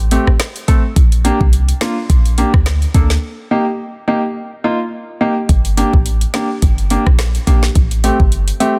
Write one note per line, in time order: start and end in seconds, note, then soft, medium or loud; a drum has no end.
0.00 0.17 A1 loud
0.11 0.24 A3 medium
0.11 0.24 C4 medium
0.11 0.24 G4 medium
0.11 closed hi-hat medium
0.27 0.37 A1 medium
0.27 cross-stick medium
0.40 cross-stick loud
0.40 snare loud
0.40 closed hi-hat medium
0.56 closed hi-hat soft
0.68 0.81 A3 medium
0.68 0.81 C4 medium
0.68 0.81 A4 medium
0.68 kick medium
0.68 closed hi-hat medium
0.96 1.31 A#1 loud
0.96 kick loud
0.96 closed hi-hat medium
1.12 closed hi-hat medium
1.24 1.37 A#3 medium
1.24 1.37 D4 medium
1.24 1.37 G4 loud
1.24 closed hi-hat medium
1.41 1.72 C2 medium
1.41 kick medium
1.53 closed hi-hat medium
1.69 closed hi-hat medium
1.81 1.94 A#3 medium
1.81 1.94 D4 medium
1.81 1.94 F4 loud
1.81 cross-stick medium
1.81 snare loud
1.81 closed hi-hat medium
2.10 2.44 A#1 loud
2.10 kick medium
2.10 closed hi-hat medium
2.26 closed hi-hat soft
2.38 2.51 A#3 medium
2.38 2.51 D4 medium
2.38 2.51 G4 medium
2.38 closed hi-hat medium
2.54 2.85 D2 medium
2.54 kick loud
2.54 cross-stick loud
2.66 cross-stick loud
2.66 snare loud
2.66 closed hi-hat medium
2.82 closed hi-hat soft
2.94 3.16 D2 medium
2.94 3.07 A#3 medium
2.94 3.07 D4 medium
2.94 3.07 A4 medium
2.94 kick medium
2.94 closed hi-hat medium
3.10 snare medium
3.51 3.64 A#3 medium
3.51 3.64 D#4 medium
3.51 3.64 G4 loud
4.08 4.20 A#3 medium
4.08 4.20 D#4 medium
4.08 4.20 G4 loud
4.64 4.77 A#3 medium
4.64 4.77 D#4 medium
4.64 4.77 F4 loud
5.21 5.33 A#3 medium
5.21 5.33 D#4 medium
5.21 5.33 G4 medium
5.49 5.83 G1 loud
5.49 kick loud
5.49 closed hi-hat medium
5.65 closed hi-hat medium
5.77 5.90 A#3 medium
5.77 5.90 D4 medium
5.77 5.90 G4 loud
5.77 closed hi-hat medium
5.93 6.25 A1 medium
5.93 kick medium
6.06 closed hi-hat medium
6.21 closed hi-hat medium
6.34 6.47 A#3 medium
6.34 6.47 D4 medium
6.34 6.47 G4 loud
6.34 cross-stick medium
6.34 snare loud
6.34 closed hi-hat medium
6.62 6.97 G1 loud
6.62 kick loud
6.62 closed hi-hat medium
6.78 closed hi-hat medium
6.90 7.03 A#3 medium
6.90 7.03 D4 medium
6.90 7.03 G4 medium
6.90 closed hi-hat medium
7.07 7.38 A#1 loud
7.07 kick loud
7.07 cross-stick medium
7.19 cross-stick loud
7.19 snare loud
7.19 closed hi-hat medium
7.35 closed hi-hat soft
7.47 7.69 A#1 medium
7.47 7.60 A#3 medium
7.47 7.60 D4 medium
7.47 7.60 G4 medium
7.47 kick medium
7.47 closed hi-hat medium
7.63 snare medium
7.75 8.10 A1 loud
7.75 kick loud
7.75 closed hi-hat medium
7.91 closed hi-hat medium
8.04 8.16 A3 medium
8.04 8.16 C4 medium
8.04 8.17 G4 loud
8.04 closed hi-hat medium
8.20 8.51 G1 medium
8.20 kick medium
8.32 closed hi-hat medium
8.48 closed hi-hat medium
8.60 8.73 A3 medium
8.60 8.73 C4 medium
8.60 8.73 G4 loud
8.60 8.79 E5 medium
8.60 closed hi-hat medium